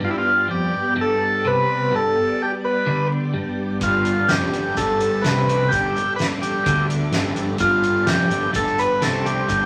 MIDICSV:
0, 0, Header, 1, 6, 480
1, 0, Start_track
1, 0, Tempo, 474308
1, 15, Time_signature, 4, 2, 24, 8
1, 9773, End_track
2, 0, Start_track
2, 0, Title_t, "String machine"
2, 0, Program_c, 0, 50
2, 0, Note_on_c, 0, 55, 65
2, 0, Note_on_c, 0, 59, 64
2, 0, Note_on_c, 0, 67, 73
2, 0, Note_on_c, 0, 74, 66
2, 3828, Note_off_c, 0, 67, 0
2, 3887, Note_on_c, 0, 69, 83
2, 9773, Note_off_c, 0, 55, 0
2, 9773, Note_off_c, 0, 59, 0
2, 9773, Note_off_c, 0, 69, 0
2, 9773, Note_off_c, 0, 74, 0
2, 9773, End_track
3, 0, Start_track
3, 0, Title_t, "Transistor combo organ"
3, 0, Program_c, 1, 18
3, 43, Note_on_c, 1, 65, 79
3, 96, Note_off_c, 1, 65, 0
3, 104, Note_on_c, 1, 64, 79
3, 166, Note_off_c, 1, 64, 0
3, 177, Note_on_c, 1, 65, 77
3, 482, Note_off_c, 1, 65, 0
3, 511, Note_on_c, 1, 67, 79
3, 951, Note_off_c, 1, 67, 0
3, 1023, Note_on_c, 1, 69, 103
3, 1490, Note_on_c, 1, 71, 105
3, 1494, Note_off_c, 1, 69, 0
3, 1968, Note_off_c, 1, 71, 0
3, 1976, Note_on_c, 1, 69, 107
3, 2449, Note_on_c, 1, 67, 87
3, 2450, Note_off_c, 1, 69, 0
3, 2550, Note_off_c, 1, 67, 0
3, 2677, Note_on_c, 1, 71, 84
3, 3114, Note_off_c, 1, 71, 0
3, 3877, Note_on_c, 1, 65, 79
3, 4334, Note_on_c, 1, 67, 78
3, 4362, Note_off_c, 1, 65, 0
3, 4828, Note_on_c, 1, 69, 97
3, 4830, Note_off_c, 1, 67, 0
3, 5279, Note_on_c, 1, 71, 97
3, 5317, Note_off_c, 1, 69, 0
3, 5753, Note_on_c, 1, 67, 94
3, 5782, Note_off_c, 1, 71, 0
3, 6210, Note_off_c, 1, 67, 0
3, 6234, Note_on_c, 1, 71, 90
3, 6347, Note_off_c, 1, 71, 0
3, 6489, Note_on_c, 1, 67, 77
3, 6939, Note_off_c, 1, 67, 0
3, 7695, Note_on_c, 1, 65, 94
3, 8162, Note_on_c, 1, 67, 83
3, 8188, Note_off_c, 1, 65, 0
3, 8613, Note_off_c, 1, 67, 0
3, 8659, Note_on_c, 1, 69, 100
3, 8896, Note_on_c, 1, 71, 104
3, 8903, Note_off_c, 1, 69, 0
3, 9134, Note_on_c, 1, 69, 95
3, 9141, Note_off_c, 1, 71, 0
3, 9364, Note_on_c, 1, 67, 76
3, 9380, Note_off_c, 1, 69, 0
3, 9773, Note_off_c, 1, 67, 0
3, 9773, End_track
4, 0, Start_track
4, 0, Title_t, "Clean electric guitar"
4, 0, Program_c, 2, 27
4, 3, Note_on_c, 2, 43, 108
4, 482, Note_off_c, 2, 43, 0
4, 487, Note_on_c, 2, 41, 88
4, 724, Note_off_c, 2, 41, 0
4, 747, Note_on_c, 2, 43, 72
4, 933, Note_off_c, 2, 43, 0
4, 972, Note_on_c, 2, 43, 100
4, 1447, Note_off_c, 2, 43, 0
4, 1466, Note_on_c, 2, 48, 98
4, 1935, Note_off_c, 2, 48, 0
4, 1936, Note_on_c, 2, 43, 101
4, 2169, Note_off_c, 2, 43, 0
4, 2899, Note_on_c, 2, 50, 92
4, 3371, Note_off_c, 2, 50, 0
4, 3375, Note_on_c, 2, 43, 109
4, 3849, Note_off_c, 2, 43, 0
4, 3861, Note_on_c, 2, 43, 100
4, 4332, Note_off_c, 2, 43, 0
4, 4351, Note_on_c, 2, 41, 83
4, 4577, Note_off_c, 2, 41, 0
4, 4592, Note_on_c, 2, 43, 70
4, 4777, Note_off_c, 2, 43, 0
4, 4836, Note_on_c, 2, 43, 95
4, 5299, Note_off_c, 2, 43, 0
4, 5300, Note_on_c, 2, 48, 109
4, 5771, Note_off_c, 2, 48, 0
4, 5783, Note_on_c, 2, 43, 95
4, 6013, Note_off_c, 2, 43, 0
4, 6741, Note_on_c, 2, 50, 91
4, 7211, Note_off_c, 2, 50, 0
4, 7231, Note_on_c, 2, 43, 95
4, 7678, Note_off_c, 2, 43, 0
4, 7690, Note_on_c, 2, 43, 110
4, 8162, Note_off_c, 2, 43, 0
4, 8166, Note_on_c, 2, 41, 97
4, 8396, Note_off_c, 2, 41, 0
4, 8400, Note_on_c, 2, 43, 68
4, 8598, Note_off_c, 2, 43, 0
4, 8634, Note_on_c, 2, 43, 96
4, 9115, Note_off_c, 2, 43, 0
4, 9124, Note_on_c, 2, 48, 105
4, 9599, Note_on_c, 2, 43, 105
4, 9600, Note_off_c, 2, 48, 0
4, 9773, Note_off_c, 2, 43, 0
4, 9773, End_track
5, 0, Start_track
5, 0, Title_t, "Fingered electric bass"
5, 0, Program_c, 3, 33
5, 3860, Note_on_c, 3, 31, 86
5, 4306, Note_off_c, 3, 31, 0
5, 4340, Note_on_c, 3, 29, 97
5, 4562, Note_off_c, 3, 29, 0
5, 4577, Note_on_c, 3, 31, 69
5, 4800, Note_off_c, 3, 31, 0
5, 4831, Note_on_c, 3, 31, 83
5, 5271, Note_off_c, 3, 31, 0
5, 5308, Note_on_c, 3, 36, 88
5, 5749, Note_off_c, 3, 36, 0
5, 5798, Note_on_c, 3, 31, 88
5, 6012, Note_off_c, 3, 31, 0
5, 6744, Note_on_c, 3, 38, 79
5, 7186, Note_off_c, 3, 38, 0
5, 7223, Note_on_c, 3, 31, 99
5, 7666, Note_off_c, 3, 31, 0
5, 7690, Note_on_c, 3, 31, 79
5, 8138, Note_off_c, 3, 31, 0
5, 8184, Note_on_c, 3, 29, 99
5, 8402, Note_off_c, 3, 29, 0
5, 8416, Note_on_c, 3, 31, 70
5, 8638, Note_off_c, 3, 31, 0
5, 8648, Note_on_c, 3, 31, 90
5, 9096, Note_off_c, 3, 31, 0
5, 9143, Note_on_c, 3, 36, 94
5, 9583, Note_off_c, 3, 36, 0
5, 9616, Note_on_c, 3, 31, 90
5, 9773, Note_off_c, 3, 31, 0
5, 9773, End_track
6, 0, Start_track
6, 0, Title_t, "Drums"
6, 3852, Note_on_c, 9, 42, 93
6, 3856, Note_on_c, 9, 36, 100
6, 3865, Note_on_c, 9, 70, 89
6, 3953, Note_off_c, 9, 42, 0
6, 3957, Note_off_c, 9, 36, 0
6, 3967, Note_off_c, 9, 70, 0
6, 4097, Note_on_c, 9, 42, 75
6, 4106, Note_on_c, 9, 70, 62
6, 4198, Note_off_c, 9, 42, 0
6, 4207, Note_off_c, 9, 70, 0
6, 4340, Note_on_c, 9, 38, 115
6, 4340, Note_on_c, 9, 42, 81
6, 4340, Note_on_c, 9, 70, 90
6, 4441, Note_off_c, 9, 38, 0
6, 4441, Note_off_c, 9, 42, 0
6, 4441, Note_off_c, 9, 70, 0
6, 4588, Note_on_c, 9, 42, 73
6, 4592, Note_on_c, 9, 70, 71
6, 4689, Note_off_c, 9, 42, 0
6, 4694, Note_off_c, 9, 70, 0
6, 4827, Note_on_c, 9, 70, 97
6, 4828, Note_on_c, 9, 36, 91
6, 4839, Note_on_c, 9, 42, 94
6, 4928, Note_off_c, 9, 70, 0
6, 4930, Note_off_c, 9, 36, 0
6, 4940, Note_off_c, 9, 42, 0
6, 5062, Note_on_c, 9, 42, 68
6, 5163, Note_off_c, 9, 42, 0
6, 5305, Note_on_c, 9, 38, 105
6, 5305, Note_on_c, 9, 42, 90
6, 5318, Note_on_c, 9, 70, 109
6, 5406, Note_off_c, 9, 38, 0
6, 5406, Note_off_c, 9, 42, 0
6, 5419, Note_off_c, 9, 70, 0
6, 5557, Note_on_c, 9, 42, 59
6, 5557, Note_on_c, 9, 70, 67
6, 5658, Note_off_c, 9, 42, 0
6, 5658, Note_off_c, 9, 70, 0
6, 5791, Note_on_c, 9, 70, 106
6, 5793, Note_on_c, 9, 36, 101
6, 5805, Note_on_c, 9, 42, 78
6, 5892, Note_off_c, 9, 70, 0
6, 5894, Note_off_c, 9, 36, 0
6, 5907, Note_off_c, 9, 42, 0
6, 6034, Note_on_c, 9, 70, 70
6, 6046, Note_on_c, 9, 42, 62
6, 6135, Note_off_c, 9, 70, 0
6, 6147, Note_off_c, 9, 42, 0
6, 6259, Note_on_c, 9, 70, 90
6, 6274, Note_on_c, 9, 38, 101
6, 6274, Note_on_c, 9, 42, 84
6, 6361, Note_off_c, 9, 70, 0
6, 6376, Note_off_c, 9, 38, 0
6, 6376, Note_off_c, 9, 42, 0
6, 6503, Note_on_c, 9, 42, 65
6, 6507, Note_on_c, 9, 70, 78
6, 6604, Note_off_c, 9, 42, 0
6, 6608, Note_off_c, 9, 70, 0
6, 6739, Note_on_c, 9, 42, 91
6, 6743, Note_on_c, 9, 36, 104
6, 6756, Note_on_c, 9, 70, 101
6, 6840, Note_off_c, 9, 42, 0
6, 6844, Note_off_c, 9, 36, 0
6, 6857, Note_off_c, 9, 70, 0
6, 6981, Note_on_c, 9, 42, 65
6, 6990, Note_on_c, 9, 70, 90
6, 7082, Note_off_c, 9, 42, 0
6, 7091, Note_off_c, 9, 70, 0
6, 7208, Note_on_c, 9, 38, 111
6, 7208, Note_on_c, 9, 42, 86
6, 7223, Note_on_c, 9, 70, 93
6, 7309, Note_off_c, 9, 38, 0
6, 7309, Note_off_c, 9, 42, 0
6, 7324, Note_off_c, 9, 70, 0
6, 7447, Note_on_c, 9, 42, 62
6, 7458, Note_on_c, 9, 70, 75
6, 7548, Note_off_c, 9, 42, 0
6, 7559, Note_off_c, 9, 70, 0
6, 7672, Note_on_c, 9, 42, 85
6, 7688, Note_on_c, 9, 36, 95
6, 7689, Note_on_c, 9, 70, 86
6, 7773, Note_off_c, 9, 42, 0
6, 7790, Note_off_c, 9, 36, 0
6, 7791, Note_off_c, 9, 70, 0
6, 7928, Note_on_c, 9, 42, 71
6, 7931, Note_on_c, 9, 70, 68
6, 8029, Note_off_c, 9, 42, 0
6, 8033, Note_off_c, 9, 70, 0
6, 8165, Note_on_c, 9, 38, 107
6, 8165, Note_on_c, 9, 42, 93
6, 8181, Note_on_c, 9, 70, 84
6, 8266, Note_off_c, 9, 38, 0
6, 8266, Note_off_c, 9, 42, 0
6, 8282, Note_off_c, 9, 70, 0
6, 8404, Note_on_c, 9, 70, 67
6, 8412, Note_on_c, 9, 42, 64
6, 8505, Note_off_c, 9, 70, 0
6, 8513, Note_off_c, 9, 42, 0
6, 8643, Note_on_c, 9, 70, 85
6, 8650, Note_on_c, 9, 42, 97
6, 8651, Note_on_c, 9, 36, 103
6, 8745, Note_off_c, 9, 70, 0
6, 8751, Note_off_c, 9, 42, 0
6, 8752, Note_off_c, 9, 36, 0
6, 8767, Note_on_c, 9, 38, 27
6, 8868, Note_off_c, 9, 38, 0
6, 8890, Note_on_c, 9, 70, 79
6, 8899, Note_on_c, 9, 42, 76
6, 8991, Note_off_c, 9, 70, 0
6, 9000, Note_off_c, 9, 42, 0
6, 9127, Note_on_c, 9, 38, 90
6, 9127, Note_on_c, 9, 42, 92
6, 9131, Note_on_c, 9, 70, 101
6, 9228, Note_off_c, 9, 38, 0
6, 9228, Note_off_c, 9, 42, 0
6, 9232, Note_off_c, 9, 70, 0
6, 9371, Note_on_c, 9, 42, 70
6, 9375, Note_on_c, 9, 70, 74
6, 9472, Note_off_c, 9, 42, 0
6, 9476, Note_off_c, 9, 70, 0
6, 9606, Note_on_c, 9, 70, 91
6, 9609, Note_on_c, 9, 36, 93
6, 9611, Note_on_c, 9, 42, 88
6, 9707, Note_off_c, 9, 70, 0
6, 9711, Note_off_c, 9, 36, 0
6, 9712, Note_off_c, 9, 42, 0
6, 9773, End_track
0, 0, End_of_file